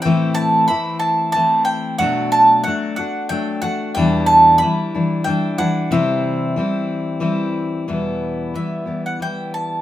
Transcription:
X:1
M:3/4
L:1/16
Q:1/4=92
K:Em
V:1 name="Mandolin"
g2 a2 b2 a2 a2 g2 | f2 a2 f2 f2 g2 f2 | g2 a2 b4 g2 f2 | e8- e2 z2 |
z4 e3 f g2 a2 |]
V:2 name="Steel-string acoustic guitar"
[A,,E,A,CE]4 [E,A,CE]4 [E,A,CE]4 | [B,,F,A,DF]4 [F,A,DF]2 [A,DF]2 [F,A,D]2 [A,DF]2 | [E,,B,,E,G,DE]4 [E,G,DE]2 [E,G,DE]2 [E,G,DE]2 [E,G,DE]2 | [C,E,G,CE]4 [E,G,CE]4 [E,G,CE]4 |
[E,,B,,E,G,B,E]4 [E,G,B,E]2 [E,G,B,E]2 [E,G,B,E]4 |]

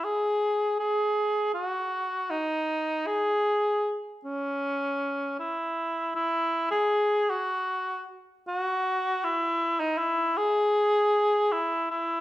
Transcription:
X:1
M:4/4
L:1/16
Q:1/4=78
K:G#phr
V:1 name="Cor anglais"
G4 G4 F4 D4 | G4- G z C6 E4 | E3 G3 F4 z2 F4 | E3 D E2 G6 E2 E2 |]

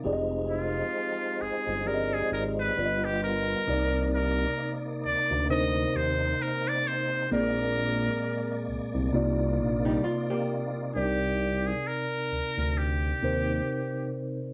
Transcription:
X:1
M:4/4
L:1/16
Q:"Swing 16ths" 1/4=66
K:Cm
V:1 name="Muted trumpet"
z2 F4 A2 B A B =B2 G _B2- | B2 B3 z d2 e2 c2 B d c2 | B6 z8 z2 | G3 A B4 G6 z2 |]
V:2 name="Hollow-body jazz guitar"
z16 | z16 | z8 z3 [G,E] F [B,G]3 | z16 |]
V:3 name="Tine electric piano"
[F,CGAde]6 z2 [F,CGAde]4 [D,G,F=Bde]4 | [C,CEBd]6 z2 [C,CEBc]6 z2 | [B,,B,CAd]6 z2 [C,B,EFd]6 z2 | [C,CDEBd]6 z4 [C,CEBc]4- [C,CEBc] z |]
V:4 name="Tonewheel organ"
E12 =B,4 | d8 C8 | B,8 E8 | z16 |]
V:5 name="Tonewheel organ"
[F,A,C]12 [G,F]4 | [C,B,E]16 | [A,d]8 [C,B,F]8 | z16 |]
V:6 name="Analog synth bass" clef=bass
F,,,4 z2 G,,, G,,,3 A,,,2 G,,,4 | C,,4 z2 D,, D,,3 E,,2 z4 | B,,,4 z2 C,, C,, C,,2 B,,,2 z4 | C,,4 z2 D,, D,,3 E,,2 z4 |]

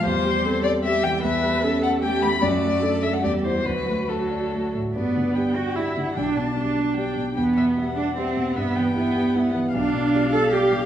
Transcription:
X:1
M:3/4
L:1/16
Q:1/4=150
K:G
V:1 name="Violin"
c6 d2 e2 g2 | e6 f2 g2 b2 | d6 e f d2 c2 | B4 A6 z2 |
d4 g4 e2 f2 | g2 a6 g4 | g2 e2 f8 | e2 g6 f4 |
[K:Gmix] f12 |]
V:2 name="Viola"
G4 A4 G4 | B4 A4 G4 | F4 A4 G4 | F8- F2 z2 |
B,6 F2 E4 | D4 D6 z2 | B,6 D2 C4 | B,4 B,6 z2 |
[K:Gmix] D6 A2 G4 |]
V:3 name="Cello"
G,8 G,4 | A,8 A,4 | A,8 G,4 | F,4 F,6 z2 |
B,6 F2 E4 | D4 D6 z2 | B,6 D2 C4 | B,4 B,6 z2 |
[K:Gmix] D6 A2 G4 |]
V:4 name="Grand piano" clef=bass
E,,2 G,2 C2 G2 G,2 E,2 | E,,2 G,2 ^C2 A2 G,2 E,2 | F,,2 A,2 D2 A2 E,,2 [Ec]2 | D,,2 A,2 F2 d2 A,2 A,,2 |
G,,2 D,2 [G,Gd]2 G,2 [G,Gd]2 D,2 | B,,,2 B,,2 [G,Gd]2 G,2 [G,Gd]2 B,,2 | E,,2 B,,2 [G,Ge]2 G,2 [G,Ge]2 B,,2 | G,,2 E,2 [G,Ee]2 G,2 [G,Ee]2 E,2 |
[K:Gmix] B,,,2 B,,2 [G,Fd]2 G,2 [G,Fd]2 B,,2 |]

